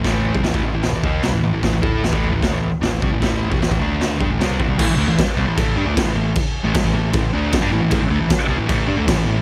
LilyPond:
<<
  \new Staff \with { instrumentName = "Distorted electric guitar" } { \clef bass \time 4/4 \key a \minor \tempo 4 = 153 <a, e a>8. <c g>16 <a, e>16 <a, e>16 <a, e>16 <a, e>8 <a, e>16 <dis bes dis'>8 <c g>16 <a, e>16 <a, e>16 <a, e>16 | <a, e>16 <a, e>16 <a e' a'>8 <a, e>16 <a, e a>8 <a, e>16 <d a>16 <a, e>8 r16 <a, e>16 <a, e>16 <c g>16 <a, e>16 | <a, e a>8. <c g>16 <a, e>16 <a, e>16 <d a d'>4 <g d'>16 <a, e>16 <c g c'>8 <a, e>16 <c g>16 | <a, e>16 r16 <d a>16 <a, e>16 r8 <c g>16 <a, e>16 <a, e a>8 <g d'>16 <d a>16 <a, e>16 <a, e>16 <a, e>8 |
r8. <a, e>16 r16 <a, e>16 <a, e>8 <a, e>8 <d a d'>8 r16 <g d'>16 <a, e>16 <a, e>16 | <a, e>16 r16 <d a>16 <a, e>16 r8 <c g>16 <a, e>16 <a, e a>8 <g d'>16 <d a>16 <a, e>16 <a, e>16 <a, e>8 | }
  \new Staff \with { instrumentName = "Picked electric bass" } { \clef bass \time 4/4 \key a \minor a,,8. c,16 a,,16 a,,16 a,,16 a,,8 a,,16 dis,8 c,16 a,,16 a,,16 a,,16 | a,,16 a,,16 a,8 a,,16 a,,8 a,,16 d,16 a,,8 r16 a,,16 a,,16 c,16 a,,16 | a,,8. c,16 a,,16 a,,16 d,4 g,16 a,,16 c,8 a,,16 c,16 | a,,16 r16 d,16 a,,16 r8 c,16 a,,16 a,,8 g,16 d,16 a,,16 a,,16 a,,8 |
r8. a,,16 r16 a,,16 a,,8 a,,8 d,8 r16 g,16 a,,16 a,,16 | a,,16 r16 d,16 a,,16 r8 c,16 a,,16 a,,8 g,16 d,16 a,,16 a,,16 a,,8 | }
  \new DrumStaff \with { instrumentName = "Drums" } \drummode { \time 4/4 <bd sn tomfh>8 tomfh16 bd16 <sn tomfh>16 bd16 tomfh8 <sn tomfh>8 <bd tomfh>8 <sn tomfh>8 tomfh8 | <bd sn tomfh>8 <bd tomfh>8 <sn tomfh>16 bd16 tomfh8 <bd sn tomfh>8 tomfh8 <sn tomfh>8 <bd tomfh>8 | <bd sn tomfh>8 tomfh16 bd16 <sn tomfh>16 bd16 tomfh8 <sn tomfh>8 <bd tomfh>8 <sn tomfh>8 <bd tomfh>8 | <cymc bd>4 <cymc bd sn>4 <cymc bd>4 <cymc bd sn>4 |
<cymc bd>4 <cymc bd sn>4 <cymc bd>4 <cymc bd sn>4 | <cymc bd>4 <cymc bd sn>4 <cymc bd>4 <cymc bd sn>4 | }
>>